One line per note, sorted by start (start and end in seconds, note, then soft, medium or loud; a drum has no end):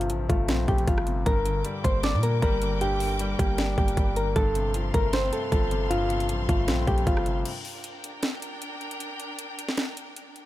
0.00 0.12 G1 loud
0.00 1.26 G2 loud
0.00 1.07 C3 medium
0.00 0.10 F3 medium
0.00 0.29 A3 medium
0.00 0.49 C4 loud
0.00 closed hi-hat medium
0.10 0.28 A1 loud
0.10 0.85 F3 medium
0.10 closed hi-hat medium
0.29 0.50 G1 loud
0.29 0.67 A3 medium
0.29 0.66 F4 medium
0.29 kick loud
0.29 closed hi-hat medium
0.48 0.67 A#1 loud
0.48 1.26 C4 medium
0.48 snare loud
0.48 closed hi-hat medium
0.68 0.87 A#1 loud
0.68 1.26 A3 medium
0.68 0.83 G4 medium
0.68 kick medium
0.68 closed hi-hat medium
0.78 closed hi-hat medium
0.87 1.25 G1 loud
0.87 1.26 F3 medium
0.87 1.24 F4 medium
0.87 kick loud
0.87 closed hi-hat medium
0.98 cross-stick loud
1.07 1.26 C3 medium
1.07 closed hi-hat medium
1.26 1.63 G1 loud
1.26 2.23 G2 medium
1.26 1.63 A#4 loud
1.26 4.33 A#4 medium
1.26 4.33 G5 medium
1.26 4.33 D6 medium
1.26 kick loud
1.26 closed hi-hat medium
1.45 2.42 D3 medium
1.45 closed hi-hat medium
1.65 2.41 G3 medium
1.65 closed hi-hat medium
1.84 2.15 G1 loud
1.84 2.22 A#3 medium
1.84 1.99 C5 medium
1.84 kick loud
1.84 closed hi-hat medium
2.03 3.00 D4 medium
2.03 2.19 D5 medium
2.03 snare loud
2.03 closed hi-hat medium
2.14 2.41 A#2 loud
2.23 3.20 A#3 medium
2.23 2.38 A#4 medium
2.23 closed hi-hat medium
2.42 3.35 G1 loud
2.42 3.19 G3 loud
2.42 2.79 A#4 medium
2.42 kick loud
2.42 closed hi-hat medium
2.61 2.98 D3 medium
2.61 closed hi-hat medium
2.81 3.78 G2 medium
2.81 3.18 G4 loud
2.81 closed hi-hat medium
3.00 3.97 D3 medium
3.00 open hi-hat medium
3.19 3.96 G3 loud
3.19 closed hi-hat medium
3.39 3.76 G1 loud
3.39 3.76 A#3 medium
3.39 3.75 G4 medium
3.39 kick loud
3.39 closed hi-hat medium
3.58 4.36 D4 loud
3.58 snare loud
3.58 closed hi-hat medium
3.78 3.96 G1 loud
3.78 4.36 A#3 medium
3.78 4.14 G4 medium
3.78 kick medium
3.78 closed hi-hat soft
3.88 closed hi-hat medium
3.97 4.34 G1 loud
3.97 4.36 G3 medium
3.97 kick loud
3.97 closed hi-hat medium
4.16 4.36 D3 medium
4.16 4.32 A#4 medium
4.16 closed hi-hat medium
4.36 4.92 G1 loud
4.36 5.33 G2 loud
4.36 7.42 A4 medium
4.36 4.72 A4 loud
4.36 7.42 F5 medium
4.36 7.42 C6 medium
4.36 kick loud
4.36 closed hi-hat medium
4.55 5.52 C3 medium
4.55 closed hi-hat medium
4.74 5.50 F3 medium
4.74 closed hi-hat medium
4.94 5.31 G1 loud
4.94 5.31 A3 medium
4.94 5.09 A#4 medium
4.94 kick loud
4.94 closed hi-hat medium
5.13 6.10 C4 loud
5.13 5.28 C5 medium
5.13 snare loud
5.13 closed hi-hat medium
5.33 6.29 A3 medium
5.33 5.48 A4 medium
5.33 closed hi-hat medium
5.52 6.31 G1 loud
5.52 6.28 F3 medium
5.52 5.88 A4 medium
5.52 kick loud
5.52 closed hi-hat medium
5.71 6.09 C3 medium
5.71 closed hi-hat medium
5.90 6.87 G2 loud
5.90 6.27 F4 loud
5.90 closed hi-hat medium
6.10 7.07 C3 medium
6.10 closed hi-hat medium
6.10 open hi-hat medium
6.20 closed hi-hat medium
6.29 6.48 A1 loud
6.29 7.05 F3 medium
6.29 closed hi-hat medium
6.48 6.70 G1 loud
6.48 6.86 A3 medium
6.48 6.85 F4 medium
6.48 kick loud
6.48 closed hi-hat medium
6.68 6.87 A#1 loud
6.68 7.46 C4 medium
6.68 snare loud
6.68 closed hi-hat medium
6.87 7.06 A#1 loud
6.87 7.46 A3 medium
6.87 7.03 G4 medium
6.87 kick medium
6.87 closed hi-hat medium
6.98 closed hi-hat medium
7.06 7.44 G1 loud
7.06 7.45 F3 medium
7.06 7.43 F4 medium
7.06 kick loud
7.06 closed hi-hat medium
7.17 cross-stick loud
7.26 7.45 C3 medium
7.26 closed hi-hat medium
7.45 10.46 D4 medium
7.45 10.46 A#4 medium
7.45 10.46 G5 medium
7.45 closed hi-hat medium
7.45 crash loud
7.65 open hi-hat medium
7.84 closed hi-hat medium
8.04 closed hi-hat medium
8.23 snare loud
8.23 closed hi-hat medium
8.42 closed hi-hat medium
8.62 closed hi-hat medium
8.81 closed hi-hat soft
8.91 closed hi-hat medium
9.00 closed hi-hat medium
9.20 closed hi-hat medium
9.39 closed hi-hat medium
9.59 closed hi-hat medium
9.69 snare medium
9.77 snare loud
9.77 closed hi-hat medium
9.97 closed hi-hat medium
10.16 closed hi-hat medium
10.36 closed hi-hat soft